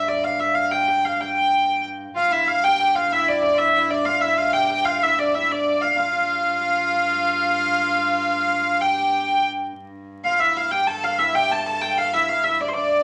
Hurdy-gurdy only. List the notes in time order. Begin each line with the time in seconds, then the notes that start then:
0.08 D5
0.24 F5
0.40 E5
0.55 F5
0.72 G5
0.88 G5
1.05 F5
1.21 G5
2.17 F5
2.32 E5
2.47 F5
2.64 G5
2.80 G5
2.95 F5
3.12 E5
3.28 D5
3.42 D5
3.58 E5
3.91 D5
4.05 F5
4.21 E5
4.37 F5
4.53 G5
4.70 G5
4.85 F5
5.03 E5
5.19 D5
5.34 E5
5.52 D5
5.82 F5
5.97 F5
8.81 G5
10.25 F5
10.39 E5
10.57 F5
10.71 G5
10.87 A5
11.04 F5
11.18 E5
11.35 G5
11.51 A5
11.66 A5
11.81 G5
11.98 F5
12.14 E5
12.29 F5
12.44 E5
12.61 D5
12.68 C5
12.73 D5